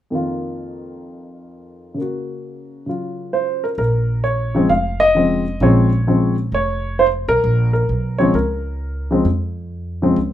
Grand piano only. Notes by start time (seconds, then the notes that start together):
0.10 F2 D#3 A#3
0.15 F4
1.94 C#3 A#3
2.02 F#4
2.86 C#3 F#3 F4
3.33 C5
3.64 A#4
3.78 A#4
4.24 C#5
4.55 C#3 F3 G#3 C4
4.69 F5
5.00 D#5
5.15 C#3 F3 G#3 C4
5.61 C#3 F3 G#3 C4 C#5
6.07 C#3 F3 G#3 C4
6.54 C#5
6.99 C5
7.29 A#4
7.73 A#4
8.18 C#3 F3 G#3 C4 C#5
8.35 A#4
9.11 C#3 F3 G#3 C4
10.02 C#3 F3 G#3 C4